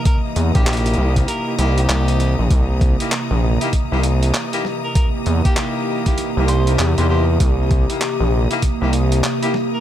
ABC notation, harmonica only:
X:1
M:4/4
L:1/16
Q:"Swing 16ths" 1/4=98
K:Cm
V:1 name="Harmonica"
B z2 G G z3 B z2 G4 z | z12 z3 B | B z2 G G z4 z c z2 c c z | z12 z3 B |]